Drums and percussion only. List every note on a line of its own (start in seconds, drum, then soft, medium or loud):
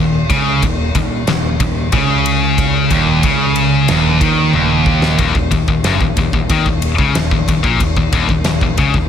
0.30 kick loud
0.30 ride medium
0.63 kick loud
0.63 ride loud
0.95 kick loud
0.95 ride medium
1.27 snare loud
1.27 ride loud
1.60 kick loud
1.60 ride medium
1.92 kick loud
1.92 ride loud
2.26 ride medium
2.58 kick loud
2.58 ride loud
2.91 kick loud
2.91 ride medium
3.23 kick loud
3.23 ride loud
3.56 ride medium
3.88 snare loud
3.88 ride loud
4.21 kick loud
4.21 ride medium
4.53 high tom medium
4.86 kick loud
5.02 snare loud
5.18 kick loud
5.18 ride loud
5.35 kick loud
5.51 kick medium
5.51 ride medium
5.68 kick loud
5.84 snare loud
5.84 ride loud
6.01 kick medium
6.17 kick loud
6.17 ride medium
6.33 kick loud
6.50 kick loud
6.50 ride loud
6.66 kick loud
6.82 ride medium
6.98 kick loud
7.15 snare loud
7.15 ride loud
7.31 kick medium
7.48 kick medium
7.48 ride medium
7.64 kick loud
7.80 kick loud
7.80 ride loud
7.97 kick loud
8.13 kick loud
8.13 ride medium
8.29 kick loud
8.44 snare loud
8.44 ride loud
8.61 kick medium
8.77 kick loud
8.77 ride medium
8.94 kick medium